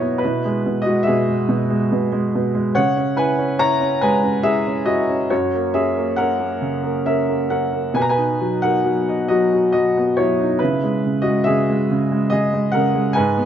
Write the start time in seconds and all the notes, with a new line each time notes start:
Already playing: B2 F#3 B3 D#4 E4 F#4 A#4 C#5 D#5 F#5
0.02 B3
0.18 B4
0.23 B2 E4
0.45 G#3
0.66 B2
0.82 D#5
0.86 G#3 F#4
1.03 G#4 E5
1.08 B2
1.28 G#3
1.49 B2
1.70 G#3
1.92 B2
2.12 G#3
2.35 B2
2.55 G#3
2.75 C#3 C#5 F#5
2.97 C#4
3.16 E4 B4 G#5
3.39 C#4
3.59 E4 C#5 A#5
3.81 C#4
4.01 G#3 B4 G#5
4.23 C#4
4.43 E4 G#4 E5
4.66 C#4
4.86 E4 F#4 D#5
5.09 C#4
5.30 F#2 F#4 C#5
5.54 A#3
5.74 C#4 G#4 E5
5.97 A#3
6.16 A#4 F#5
6.21 C#4
6.40 A#3
6.61 C#3
6.83 A#3
7.05 C#4 A#4 E5
7.29 A#3
7.50 C#4 A#4 F#5
7.73 A#3
7.94 B2 B4 G#5
8.02 A#5
8.09 B4 G#5
8.18 D#4
8.41 F#3
8.62 D#4 A#4 F#5
8.84 F#3
9.09 D#5
9.28 F#3 F#4 D#5
9.53 F#4
9.72 F#3 F#4 D#5
9.97 B3
10.17 F#3 E4 C#5
10.40 D#4
10.59 C#3 E4 B4
10.83 G#3
11.05 C#3
11.22 F#4 D#5
11.28 G#3
11.44 G#4 E5
11.48 C#3
11.70 G#3
11.90 C#3
12.12 G#3
12.30 C#3 G#4 D#5
12.54 G#3
12.72 C#3 A#4 F#5
12.95 G#3
13.13 G#2 B4 G#5
13.37 B3